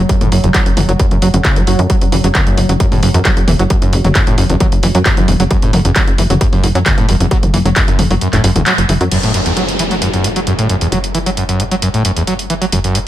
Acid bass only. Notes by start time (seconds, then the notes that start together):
0.09 F#2
0.21 A2
0.32 F#2
0.43 E2
0.54 F#3
0.77 E3
0.89 F#3
0.99 F#2
1.11 F#2
1.22 F#3
1.34 F#2
1.45 C#3
1.56 F#3
1.67 F#3
1.79 C#3
1.90 F#3
2.12 E3
2.24 F#3
2.35 F#2
2.47 F#2
2.58 A2
2.69 F#3
2.80 F#2
2.92 A2
3.02 F#2
3.14 E2
3.25 F#3
3.48 E3
3.59 F#3
3.70 F#2
3.82 F#2
3.93 A2
4.05 F#3
4.15 F#2
4.27 A2
4.38 F#2
4.50 E2
4.61 F#3
4.83 E3
4.95 F#3
5.06 F#2
5.17 F#2
5.28 A2
5.40 F#3
5.51 F#2
5.62 A2
5.73 F#2
5.85 E2
5.96 F#3
6.18 E3
6.30 F#3
6.41 F#2
6.53 F#2
6.64 A2
6.75 F#3
6.86 F#2
6.98 A2
7.09 F#2
7.20 E2
7.31 F#3
7.54 E3
7.65 F#3
7.76 F#2
7.88 F#2
7.99 A2
8.11 F#3
8.22 F#2
8.33 A2
8.44 F#2
8.56 E2
8.66 F#3
8.89 E3
9.01 F#3
9.12 F#2
9.23 A2
9.34 F#2
9.46 E2
9.57 F#3
9.80 E3
9.91 F#3
10.02 F#2
10.14 F#2
10.24 A2
10.36 F#3
10.47 F#2
10.59 A2
10.69 F#2
10.81 E2
10.92 F#3
11.15 E3
11.26 F#3
11.37 F#2
11.49 F#2
11.60 A2
11.71 F#3
11.82 F#2
11.94 A2
12.05 F#2
12.17 E2
12.27 F#3
12.50 E3
12.61 F#3
12.73 F#2
12.84 F#2
12.95 A2